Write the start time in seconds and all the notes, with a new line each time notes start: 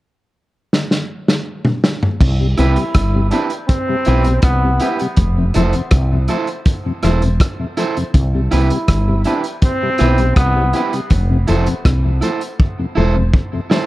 0.73 snare
0.91 snare
1.28 snare
1.65 mid tom
1.84 snare
2.03 floor tom
2.21 C2, kick, crash
2.40 C3 G3
2.58 C2 B3 C4 E4 G4 B4, cross-stick, closed hi-hat
2.76 C3 G3, closed hi-hat
2.94 G1, kick, cross-stick, closed hi-hat
3.15 C3 G3
3.31 B3 C4 D4 E4 G4 B4, closed hi-hat
3.50 closed hi-hat
3.67 C4, kick, closed hi-hat
3.89 C3 G3
4.05 B1 B3 C4 E4 G4 B4, closed hi-hat
4.24 C3 G3, closed hi-hat
4.42 C2 B3, kick, cross-stick, closed hi-hat
4.64 C3 G3
4.80 B3 C4 E4 G4 B4, closed hi-hat
4.99 C3 G3, closed hi-hat
5.17 F1, kick, closed hi-hat
5.38 F2 C3
5.54 F1 F3 A3 E4 A4 C5, cross-stick, closed hi-hat
5.73 F2 C3, closed hi-hat
5.91 C2, kick, cross-stick, closed hi-hat
6.12 F2 C3
6.28 F3 A3 E4 A4 C5, closed hi-hat
6.47 closed hi-hat
6.66 kick, closed hi-hat
6.86 F2 C3
7.03 E1 F3 A3 E4 A4 C5, cross-stick, closed hi-hat
7.22 F2 C3, closed hi-hat
7.40 kick, cross-stick, closed hi-hat
7.59 F2 C3
7.77 F3 A3 E4 A4 C5, closed hi-hat
7.97 F2 C3, closed hi-hat
8.14 C2, kick, closed hi-hat
8.34 C3 G3
8.51 C2 B3 C4 E4 G4 B4, cross-stick, closed hi-hat
8.70 C3 G3, closed hi-hat
8.88 G1, kick, cross-stick, closed hi-hat
9.08 C3 G3
9.24 B3 C4 D4 E4 G4 B4, closed hi-hat
9.44 closed hi-hat
9.62 C4, kick, closed hi-hat
9.83 C3 G3
9.98 B1 B3 C4 E4 G4 B4, cross-stick, closed hi-hat
10.18 C3 G3, closed hi-hat
10.36 C2 B3, kick, cross-stick, closed hi-hat
10.56 C3 G3
10.73 B3 C4 E4 G4 B4, closed hi-hat
10.93 C3 G3, closed hi-hat
11.10 F1, kick, closed hi-hat
11.30 F2 C3
11.48 F1 F3 A3 E4 A4 C5, closed hi-hat
11.67 F2 C3, closed hi-hat
11.85 C2, kick, cross-stick, closed hi-hat
12.04 F2 C3
12.21 F3 A3 E4 A4 C5, closed hi-hat
12.41 closed hi-hat
12.60 kick
12.79 F2 C3
12.95 E1 F3 A3 E4 A4 C5
13.15 F2 C3
13.34 kick
13.53 F2 C3
13.70 F3 A3 E4 A4 C5, snare